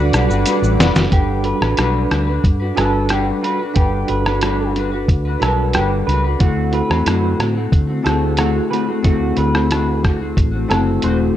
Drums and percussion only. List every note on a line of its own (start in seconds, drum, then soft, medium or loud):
0.13 cross-stick medium
0.13 closed hi-hat soft
0.13 shaker soft
0.30 shaker soft
0.46 closed hi-hat medium
0.46 shaker medium
0.64 shaker soft
0.80 snare medium
0.80 closed hi-hat soft
0.80 shaker soft
0.96 snare loud
0.96 shaker medium
1.12 kick loud
1.12 closed hi-hat medium
1.44 closed hi-hat soft
1.62 cross-stick medium
1.77 cross-stick medium
1.77 closed hi-hat medium
2.11 cross-stick medium
2.11 closed hi-hat soft
2.44 kick medium
2.44 closed hi-hat medium
2.77 cross-stick medium
2.77 closed hi-hat soft
3.09 cross-stick medium
3.09 closed hi-hat medium
3.44 closed hi-hat soft
3.76 kick medium
3.76 closed hi-hat medium
4.08 closed hi-hat soft
4.26 cross-stick medium
4.41 cross-stick medium
4.41 closed hi-hat medium
4.76 closed hi-hat soft
5.08 kick medium
5.08 closed hi-hat soft
5.42 cross-stick medium
5.42 closed hi-hat soft
5.73 cross-stick medium
5.73 closed hi-hat medium
6.09 closed hi-hat soft
6.40 kick loud
6.40 closed hi-hat medium
6.73 closed hi-hat soft
6.91 cross-stick medium
7.06 cross-stick medium
7.06 closed hi-hat medium
7.40 cross-stick medium
7.40 closed hi-hat soft
7.72 kick medium
7.72 closed hi-hat soft
8.06 cross-stick medium
8.06 closed hi-hat soft
8.37 cross-stick medium
8.37 closed hi-hat medium
8.73 closed hi-hat soft
9.04 kick loud
9.04 closed hi-hat medium
9.37 closed hi-hat soft
9.55 cross-stick medium
9.71 cross-stick medium
9.71 closed hi-hat medium
10.04 kick medium
10.04 cross-stick medium
10.04 closed hi-hat soft
10.37 kick medium
10.37 closed hi-hat medium
10.71 cross-stick medium
10.71 closed hi-hat soft
11.02 closed hi-hat medium